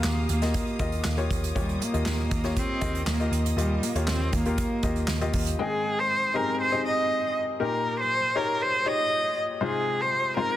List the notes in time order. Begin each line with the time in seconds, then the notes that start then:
Already playing: A#2 A#3 F4 F#4 G4 D#5 F5 D#6
0.04 D#2, snare, clap
0.29 D#2 A#3, closed hi-hat
0.42 A#3 F4 G4 D#5, snare, closed hi-hat
0.54 kick, closed hi-hat
0.67 closed hi-hat
0.79 D#2 A#3 F4 G4 D#5, kick, closed hi-hat
0.92 closed hi-hat
1.04 D#2, snare, clap
1.17 A#3 F4 G4 C#5, closed hi-hat
1.31 D#2, kick, closed hi-hat
1.44 closed hi-hat
1.55 D#2 A#2 G3 A#3 F4 G4 C#5 D#5, kick, closed hi-hat
1.69 closed hi-hat
1.82 A#3, closed hi-hat
1.93 D#2 A#3 F4 G4 D#5, closed hi-hat
2.06 D#2, snare, clap
2.31 D#2, kick, closed hi-hat
2.44 A#3 F4 G4 C#5, snare, closed hi-hat
2.57 C4, kick, closed hi-hat
2.81 D#2 A#3 F4 G4 D#5, kick, closed hi-hat
2.95 closed hi-hat
3.06 D#2 A#3, snare, clap
3.20 A#3 F4 G4 D#5, closed hi-hat
3.31 D#2, closed hi-hat
3.46 closed hi-hat
3.56 D#2 A#2 G3 A#3 F4 G4 D#5, closed hi-hat
3.83 A#3, closed hi-hat
3.95 D#2 A#3 F4 G4 C#5, closed hi-hat
4.07 D#2 C4, snare, clap
4.33 D#2 A#3, kick, closed hi-hat
4.45 A#3 F4 G4 A#4, closed hi-hat
4.58 kick, closed hi-hat
4.83 D#2 A#3 F4 G4 D#5, kick, closed hi-hat
4.96 closed hi-hat
5.08 D#2, snare, clap
5.21 A#3 F4 G4 D#5, closed hi-hat
5.33 D#2, kick, open hi-hat
5.47 closed hi-hat
5.59 G#2 D#3 C4 D#4 G#4 D#5 G5
6.00 C5
6.34 C4 D#4 G4 G#4 A#4 D#5
6.61 C5
6.72 C4 D#4 G4 G#4 D#5
6.85 D#5
7.60 A#2 D#4 G4 A#4
8.00 C5
8.35 D#4 G4 A#4 C#5
8.62 C5
8.86 D#4 G4 C#5 D#5
9.61 C3 G#3 C4 D#4 F4 G#4 C5
10.01 C5
10.37 G#3 C4 D#4 F4 A#4 C5